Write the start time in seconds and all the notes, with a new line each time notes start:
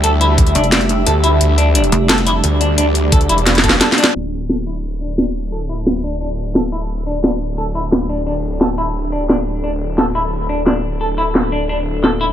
Already playing: D4 G4 E5
0.04 D2 A4, closed hi-hat
0.21 E4, closed hi-hat
0.38 kick, closed hi-hat
0.47 closed hi-hat
0.55 F1 D4, closed hi-hat
0.64 closed hi-hat
0.72 D4, snare, closed hi-hat
0.81 closed hi-hat
0.89 closed hi-hat
1.06 D2 A4, closed hi-hat
1.24 E4, closed hi-hat
1.41 D2 D5, closed hi-hat
1.58 D4, closed hi-hat
1.75 D4, closed hi-hat
1.84 closed hi-hat
1.92 F1, closed hi-hat
2.09 A4, snare, closed hi-hat
2.18 closed hi-hat
2.27 E4, closed hi-hat
2.44 D2, closed hi-hat
2.61 D4, closed hi-hat
2.78 D2 D4, closed hi-hat
2.95 closed hi-hat
3.12 A4, kick, closed hi-hat
3.21 closed hi-hat
3.29 E1 E4, closed hi-hat
3.38 closed hi-hat
3.46 snare, closed hi-hat
3.55 snare, closed hi-hat
3.64 A4, kick, closed hi-hat
3.69 snare
3.81 A4, snare, closed hi-hat
3.92 snare
3.98 D4, closed hi-hat
4.04 snare
4.15 D1 D4 A4 E5
4.49 A4, snare
4.67 E4
5.01 D4
5.18 D4, snare
5.52 A4
5.69 E4
5.86 snare
6.04 D4
6.21 D4
6.55 A4, snare
6.72 E4
6.89 G5
7.07 D4
7.24 D4, snare
7.58 A4
7.75 E4
7.92 snare
8.09 D4
8.27 D4
8.61 A4, snare
8.78 E4
9.12 D4
9.29 D4, snare
9.64 D1 D4 E5
9.98 A4, snare
10.15 E4
10.49 D4
10.66 D4, snare
11.01 A4
11.18 E4
11.35 snare
11.52 D4
11.69 D4
12.04 A4, snare
12.21 E4